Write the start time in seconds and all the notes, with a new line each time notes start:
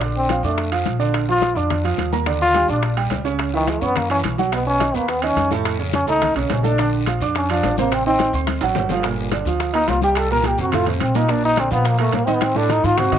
Already playing: A#1
0.01 D3 D4 D5, high bongo, high conga, high timbale, long guiro
0.16 C4, high conga
0.29 F3 F4 F5, high bongo, high conga, high timbale, short guiro
0.43 F2 A3 D4 D5 D6, high bongo, high conga, short guiro
0.58 high bongo, high conga, high timbale, long guiro
0.72 F3 F4 F5, high bongo, high conga, high timbale
0.86 A#1, high bongo, low bongo, high conga, high timbale, short guiro
0.99 D3 D4 D5, high bongo, short guiro
1.14 high bongo, high conga, high timbale, long guiro
1.28 F3 F4 F5, high conga
1.42 high bongo, high conga, high timbale, short guiro
1.55 F2 D4 D5 D6, high bongo, high conga, short guiro
1.70 high bongo, high conga, low conga, high timbale, long guiro
1.84 F3 F4 F5, high bongo, high conga, high timbale
1.98 D#2, high bongo, low bongo, high conga, high timbale, short guiro
2.12 A#3 A#4 A#5, high bongo, high conga, short guiro
2.26 D3 D4 D5, high bongo, high timbale, long guiro
2.41 F4, high conga
2.54 G3 G4 G5, high bongo, high conga, high timbale, short guiro
2.68 A#1 D4 D5 D6, high bongo, high conga, short guiro
2.83 high bongo, high conga, high timbale, long guiro
2.97 G3 G4 G5, high bongo, high conga, high timbale
3.10 C#2, high bongo, low bongo, high conga, high timbale, low timbale, short guiro
3.25 C#3 C#4 C#5, high bongo, short guiro
3.39 high bongo, high conga, high timbale, long guiro
3.53 D#3 E3 E4 E5, high conga
3.67 G#3, high bongo, high conga, high timbale, short guiro
3.81 F#2 B3 C#4 C#5 C#6, high bongo, high conga, short guiro
3.96 A#3, high bongo, high conga, low conga, high timbale, long guiro
4.10 E3 C#4 E4 E5, high bongo, high conga, high timbale
4.23 B1, high bongo, low bongo, high conga, high timbale, short guiro
4.38 F#3 F#4 F#5, high bongo, high conga, short guiro
4.52 B2 B3 B4, high bongo, high timbale, long guiro, maracas
4.66 C#4, high conga, maracas
4.80 D#3 D#4 D#5, high bongo, high conga, high timbale, short guiro, maracas
4.94 D#2 A#3 B3 B4 B5, high bongo, high conga, short guiro, maracas
5.08 B3, high bongo, high conga, high timbale, long guiro, maracas
5.22 D#3 C#4 D#4 D#5, high bongo, high conga, high timbale, maracas
5.36 F2, high bongo, low bongo, high conga, high timbale, short guiro, maracas
5.51 A2 A3 A4, high bongo, high conga, short guiro, maracas
5.65 high bongo, high conga, high timbale, long guiro, maracas
5.79 C#3 C#4 C#5, high conga, maracas
5.93 C#4, high bongo, high conga, high timbale, short guiro, maracas
6.07 C#2 A3 D#4 A4 A5, high bongo, high conga, short guiro, maracas
6.21 high bongo, high conga, low conga, high timbale, long guiro, maracas
6.35 B1 C#3 A#3 C#4 C#5, high bongo, high conga, high timbale, maracas
6.49 A#1 C#4, high bongo, low bongo, high conga, high timbale, low timbale, short guiro, maracas
6.63 A3 D4 A4 A5, high bongo, high conga, short guiro, maracas
6.78 D3 D4 D5, high bongo, high conga, high timbale, long guiro, maracas
6.93 high conga, maracas
7.06 F3 F4 F5, high bongo, high conga, high timbale, short guiro, maracas
7.20 F2 D4 D5 D6, high bongo, high conga, short guiro, maracas
7.35 C#4, high bongo, high conga, high timbale, long guiro, maracas
7.49 F3 D4 F4 F5, high bongo, high conga, high timbale, maracas
7.63 A1, high bongo, low bongo, high conga, high timbale, low timbale, short guiro, maracas
7.77 C3 A#3 C4 C5, high bongo, high conga, short guiro, maracas
7.92 C4, high bongo, high conga, high timbale, long guiro, maracas
8.06 D#3 C4 D#4 D#5, high conga, maracas
8.19 high bongo, high conga, high timbale, short guiro, maracas
8.33 D2 C4 C5 C6, high bongo, high conga, short guiro, maracas
8.47 high bongo, high conga, high timbale, long guiro, maracas
8.61 A1 F#3 F#4 F#5, high bongo, high timbale, maracas
8.75 G1, high bongo, low bongo, low conga, low timbale, short guiro, maracas
8.89 F3 F4 F5, high bongo, low conga, low timbale, short guiro, maracas
9.03 A#2 A#3 A#4, high bongo, high timbale, long guiro, maracas
9.18 high conga, maracas
9.32 D3 D4 D5, high bongo, high conga, high timbale, short guiro, maracas
9.45 D2 F3 F4 F5, high bongo, high conga, short guiro, maracas
9.60 high bongo, high conga, high timbale, long guiro, maracas
9.74 A#3 D#4 A#4 A#5, high conga, high timbale, maracas
9.88 C2 F4, high bongo, low bongo, high conga, high timbale, low timbale, short guiro, maracas
10.02 G3 G4 G5, high bongo, high conga, short guiro, maracas
10.15 A4, high bongo, high timbale, long guiro, maracas
10.30 A#2 A#3 A#4, high conga, maracas
10.44 G4, high bongo, high conga, high timbale, short guiro, maracas
10.58 F2 C3 C4 F#4 C5, high bongo, high conga, short guiro, maracas
10.72 A2 A3 F4 A4, high bongo, high conga, low conga, high timbale, long guiro, maracas
10.86 C3 A3 C4 C5, high bongo, high conga, low conga, high timbale, maracas
11.00 A#1 C4, high bongo, low bongo, high conga, high timbale, short guiro, maracas
11.15 A#2 A#3 D#4 A#4, high bongo, high conga, short guiro, maracas
11.28 A#2 A#3 D4 A#4, high bongo, high conga, high timbale, long guiro, maracas
11.43 D#4, high conga, maracas
11.57 D3 C4 D4 D5, high bongo, high conga, high timbale, short guiro, maracas
11.71 A#2 F3 B3 F4 F5, high bongo, high conga, short guiro, maracas
11.84 A#3, high bongo, high conga, high timbale, long guiro, maracas
11.99 A3 A#3 A#4 A#5, high bongo, high timbale, maracas
12.12 A2 A#3, high bongo, low bongo, high conga, high timbale, low timbale, short guiro, maracas
12.25 D#3 C4 D#4 D#5, high bongo, high conga, short guiro, maracas
12.33 B3
12.41 C4, high bongo, high conga, high timbale, long guiro, maracas
12.55 A2 A3 D4 A4, high conga, maracas
12.70 D#4, high bongo, low conga, high timbale, short guiro, maracas
12.84 G#2 D#3 D#4 F4 D#5, high bongo, short guiro, maracas
12.98 C3 C4 F#4 C5, high bongo, low conga, high timbale, long guiro, maracas
13.12 G#2 D#3 D#4 D#5, low conga, high timbale, maracas